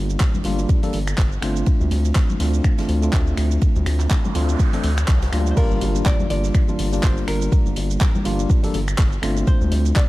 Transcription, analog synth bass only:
0.00 0.17 G1 loud
0.45 0.66 G1 medium
0.94 1.14 G1 loud
1.18 1.39 G1 medium
1.42 1.63 G1 medium
1.81 1.89 D2 loud
1.91 2.12 D2 loud
2.40 2.61 D2 medium
2.89 3.09 D2 loud
3.13 3.34 D2 medium
3.38 3.58 D2 medium
3.76 3.84 D2 loud
3.86 4.07 D2 loud
4.35 4.56 D2 medium
4.84 5.04 D2 medium
5.08 5.29 C2 medium
5.33 5.53 D2 medium
5.71 5.79 G1 loud
5.81 6.02 G1 loud
6.30 6.51 G1 medium
6.79 7.00 G1 loud
7.03 7.24 G1 medium
7.28 7.48 G1 medium
7.66 7.75 G1 loud
7.77 7.97 G1 loud
8.25 8.46 G1 medium
8.74 8.95 G1 loud
8.99 9.19 G1 medium
9.23 9.44 G1 medium
9.61 9.70 D2 loud
9.72 9.92 D2 loud

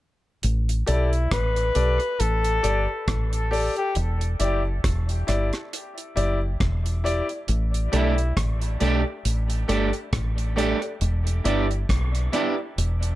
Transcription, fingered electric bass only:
0.44 0.82 A1 loud
0.88 1.26 B1 medium
1.32 1.70 A1 medium
1.76 1.97 B1 medium
2.20 2.58 A1 medium
2.64 2.86 G1 medium
3.08 3.68 A1 medium
3.96 4.34 E1 loud
4.40 4.78 F#1 medium
4.84 5.22 E1 medium
5.28 5.50 G1 medium
6.17 6.55 F#1 medium
6.61 7.20 E1 loud
7.49 7.87 A1 loud
7.93 8.31 B1 medium
8.37 8.75 A1 medium
8.81 9.03 B1 medium
9.25 9.63 A1 medium
9.69 9.91 G1 medium
10.13 10.73 A1 medium
11.01 11.39 E1 loud
11.45 11.84 G1 medium
11.89 12.28 B1 medium
12.78 13.15 E1 loud

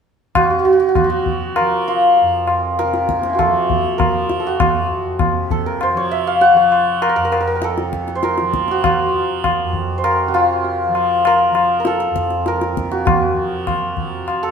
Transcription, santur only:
0.36 0.43 F#4 medium
0.43 0.50 F#4 medium
0.50 0.59 F#4 medium
0.59 0.64 F#4 medium
0.65 0.72 F#4 medium
0.73 0.79 F#4 medium
0.80 0.88 F#4 medium
0.89 0.96 F#4 medium
0.96 1.04 F#4 medium
1.04 1.09 F#4 medium
1.10 1.94 F#4 medium
1.56 2.78 A#4 medium
1.88 3.33 F4 medium
2.79 3.45 A#4 medium
3.19 3.45 A#3 soft
3.19 6.03 C4 soft
3.26 5.89 C#4 soft
3.26 6.33 E4 soft
3.33 4.53 F4 soft
3.33 4.46 F#4 soft
3.39 4.04 A4 medium
3.98 4.46 A#4 medium
4.40 5.51 A4 medium
4.47 4.61 F#4 medium
4.61 6.33 F#4 medium
5.51 5.72 A4 medium
5.66 7.02 A#4 medium
5.83 6.03 C5 medium
5.97 6.56 C#5 medium
6.11 6.33 E5 medium
6.27 6.47 F5 medium
6.41 8.55 F#5 medium
6.57 8.21 C#5 medium
7.02 7.09 A#4 medium
7.09 7.16 A#4 medium
7.16 7.24 A#4 medium
7.25 7.31 A#4 medium
7.32 7.40 A#4 medium
7.40 7.47 A#4 medium
7.47 7.55 A#4 medium
7.55 7.70 A#4 medium
7.64 8.30 A4 medium
8.15 9.97 C5 medium
8.24 10.04 A#4 medium
8.71 8.85 F#4 medium
8.85 10.28 F#4 medium
9.98 12.62 C5 medium
10.04 11.27 A#4 medium
10.28 10.40 F#4 medium
10.34 12.97 F4 medium
11.27 11.79 A#4 medium
11.80 11.93 A#4 medium
11.87 12.54 A4 medium
12.48 14.49 A#4 medium
12.91 13.05 F#4 medium
13.05 14.51 F#4 medium
14.43 14.51 A4 medium

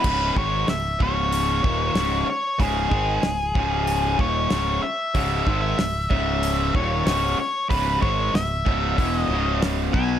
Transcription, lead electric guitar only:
0.00 0.38 B4 medium
0.38 0.67 C#5 medium
0.70 1.02 E5 medium
1.02 2.28 C#5 medium
2.30 2.61 C#5 medium
2.60 4.24 G#4 medium
4.21 4.85 C#5 medium
4.82 5.60 E5 loud
5.61 6.09 E5 medium
6.10 6.76 E5 medium
6.75 7.06 C#5 medium
7.07 7.39 C#5 medium
7.40 7.69 C#5 medium
7.70 8.01 B4 medium
8.02 8.35 C#5 medium
8.35 9.16 E5 medium
9.16 9.58 D#5 medium
9.93 10.19 G#5 medium

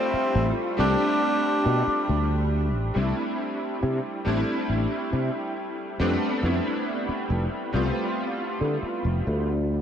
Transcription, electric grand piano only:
0.00 0.77 G3 loud
0.00 0.78 A3 medium
0.00 0.78 C4 medium
0.00 0.79 D4 medium
0.00 0.74 F4 medium
0.00 2.97 E5 loud
0.77 2.90 G3 medium
0.77 2.90 A3 medium
0.77 2.91 C4 medium
0.77 2.91 D4 medium
0.77 2.91 G4 medium
2.94 4.20 G3 medium
2.94 4.21 A3 medium
2.94 4.21 C4 medium
2.94 4.21 D4 medium
2.94 4.22 E4 medium
4.25 5.94 G3 medium
4.25 5.95 A3 medium
4.25 5.95 C4 medium
4.25 5.95 D4 medium
4.25 5.96 E4 medium
5.99 6.38 G3 medium
5.99 6.38 A3 medium
5.99 6.39 B3 medium
5.99 6.39 C4 medium
5.99 6.39 D4 loud
6.42 7.68 G3 medium
6.42 7.69 A3 medium
6.42 7.69 B3 medium
6.42 7.69 C4 medium
6.42 7.70 E4 medium
7.73 9.45 G3 medium
7.73 9.45 A3 medium
7.73 9.45 B3 medium
7.73 9.46 C4 medium
7.73 9.46 F4 medium

